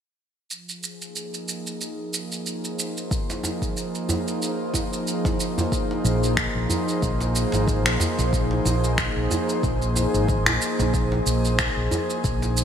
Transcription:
0.50 analog synth pad F3, shaker
0.69 shaker
0.74 analog synth pad G#4
0.83 shaker
1.02 analog synth pad A#3, shaker
1.06 analog synth pad D#4
1.16 shaker
1.34 shaker
1.48 shaker
1.67 shaker
1.81 shaker
2.14 shaker
2.32 shaker
2.46 shaker
2.59 analog synth pad C5
2.65 shaker
2.79 shaker
2.98 shaker
3.11 kick, shaker
3.30 djembe slap, shaker
3.43 djembe tone, shaker
3.62 kick, shaker
3.77 shaker
3.95 shaker
4.09 djembe bass, shaker
4.28 shaker
4.42 shaker
4.74 kick, djembe tone, shaker
4.93 shaker
5.08 shaker
5.25 kick, djembe slap, djembe tone, shaker
5.40 shaker
5.58 djembe tone, djembe bass, shaker
5.72 kick, shaker
5.91 djembe slap
6.04 fretless electric bass A#1, shaker
6.24 shaker
6.37 finger snap, kick, shaker
6.55 fretless electric bass A#1
6.70 djembe bass, shaker
6.89 shaker
7.02 fretless electric bass A#1, kick, shaker
7.20 djembe slap, shaker
7.36 shaker
7.52 fretless electric bass G#1, djembe slap, shaker
7.68 kick, shaker
7.86 fretless electric bass A#1, finger snap, shaker
8.00 djembe tone, djembe bass, shaker
8.18 fretless electric bass A#1, djembe slap, shaker
8.33 kick, shaker
8.51 djembe slap
8.65 fretless electric bass A#1, djembe tone, shaker
8.84 shaker
8.98 finger snap, kick, shaker
9.16 fretless electric bass A#1
9.31 djembe bass, shaker
9.49 shaker
9.63 fretless electric bass A#1, kick, shaker
9.82 shaker
9.96 djembe tone, shaker
10.14 fretless electric bass G#1, shaker
10.29 kick, shaker
10.46 fretless electric bass A#1, finger snap, djembe slap, djembe tone, shaker
10.62 shaker
10.79 fretless electric bass A#1, djembe tone, shaker
10.94 kick, shaker
11.12 djembe slap
11.26 fretless electric bass A#1, shaker
11.45 shaker
11.59 finger snap, kick, shaker
11.77 fretless electric bass A#1
11.91 djembe bass, shaker
12.10 shaker
12.24 fretless electric bass A#1, kick, shaker
12.42 djembe slap, shaker
12.57 shaker

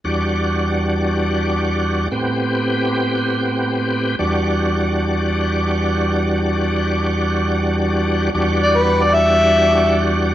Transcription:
0.04 tonewheel organ E2 G3 D4 F#4
2.12 tonewheel organ A2 B3 C4 G4
4.19 tonewheel organ E2 G3 D4 F#4
8.34 tonewheel organ E2 G3 D4 F#4
8.63 harmonica D5
8.77 harmonica B4
9.03 harmonica D5
9.14 harmonica E5

